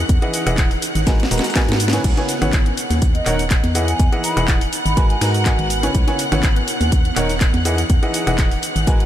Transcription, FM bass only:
0.09 0.19 E2 loud
0.47 0.77 E1 loud
0.95 1.26 G#1 medium
1.31 1.40 D#1 loud
1.69 1.99 G#2 medium
2.04 2.14 C#2 loud
2.42 2.72 G#1 loud
2.91 3.21 D#2 medium
3.26 3.58 D#1 medium
3.64 3.94 E2 loud
4.00 4.09 E2 loud
4.37 4.67 E1 loud
4.86 5.16 G#1 medium
5.21 5.53 G#2 medium
5.59 5.89 G#1 loud
5.95 6.04 C#2 loud
6.32 6.63 G#1 loud
6.81 7.11 D#2 medium
7.17 7.48 D#1 medium
7.54 7.85 E2 loud
7.90 7.99 E2 loud
8.27 8.58 E1 loud
8.76 9.06 G#1 medium

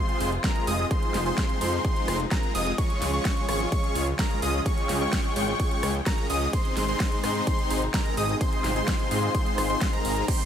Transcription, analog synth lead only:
0.00 0.29 C6 loud
0.44 0.65 A#5 loud
0.67 0.85 D#6 loud
0.91 1.23 C6 medium
1.26 1.58 C6 loud
1.61 1.82 C6 medium
1.85 2.17 C6 loud
2.31 2.52 A#5 medium
2.55 2.72 D#6 loud
2.78 3.11 C#6 medium
3.13 3.46 C#6 medium
3.49 3.69 C#6 medium
3.72 4.04 C#6 loud
4.19 4.40 A#5 medium
4.42 4.60 D#6 loud
4.66 4.98 C#6 medium
5.01 5.33 C#6 loud
5.36 5.57 C#6 medium
5.60 5.92 C#6 loud
6.06 6.27 A#5 medium
6.30 6.47 D#6 loud
6.53 6.86 C6 medium
6.88 7.21 C6 medium
7.24 7.44 C6 medium
7.47 7.79 C6 loud
7.94 8.15 A#5 loud
8.17 8.35 D#6 loud
8.41 8.73 C6 medium
8.76 9.08 C6 loud
9.11 9.32 C6 medium
9.35 9.67 C6 loud
9.70 9.90 C6 loud
9.93 10.25 A#5 medium
10.28 10.45 C6 medium

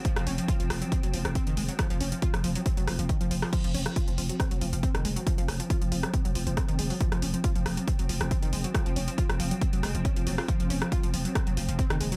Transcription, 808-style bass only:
0.16 0.26 F1 medium
0.27 0.38 F1 loud
0.60 0.70 F1 medium
0.70 0.81 F1 loud
1.03 1.13 F1 medium
1.14 1.25 F1 loud
1.25 1.35 F1 medium
1.47 1.57 F1 medium
1.57 1.68 F1 loud
1.90 2.00 F1 medium
2.01 2.12 F1 loud
2.34 2.43 F1 medium
2.44 2.55 F1 loud
2.77 2.87 F1 medium
2.88 2.98 F1 loud
2.99 3.09 F1 medium
3.21 3.30 F1 medium
3.31 3.42 F1 loud
3.64 3.74 F1 medium
3.75 3.86 F1 loud
4.08 4.17 F1 medium
4.18 4.29 F1 loud
4.51 4.61 F1 medium
4.61 4.72 F1 loud
4.73 4.83 F1 medium
4.95 5.04 F1 medium
5.05 5.16 F1 loud
5.38 5.48 F1 medium
5.48 5.60 F1 loud
5.82 5.91 F1 medium
5.92 6.03 F1 medium
6.25 6.35 F1 medium
6.35 6.46 F1 loud
6.47 6.57 F1 medium
6.69 6.78 F1 medium
6.79 6.90 F1 loud
7.12 7.22 F1 medium
7.22 7.34 F1 loud
7.56 7.65 F1 medium
7.66 7.77 F1 loud
7.99 8.09 F1 medium
8.09 8.20 F1 loud
8.21 8.31 F1 medium
8.43 8.52 F1 medium
8.53 8.64 F1 loud
8.86 8.96 F1 medium
8.96 9.07 F1 loud
9.29 9.39 F1 medium
9.40 9.51 F1 medium
9.73 9.83 F1 medium
9.83 9.94 F1 loud
9.95 10.05 F1 medium
10.16 10.26 F1 medium
10.27 10.38 F1 loud
10.60 10.70 F1 medium
10.70 10.81 F1 loud
11.03 11.13 F1 medium
11.14 11.25 F1 medium
11.47 11.57 F1 medium
11.57 11.68 F1 loud
11.69 11.79 F1 medium
11.90 12.00 F1 medium
12.01 12.12 F1 loud

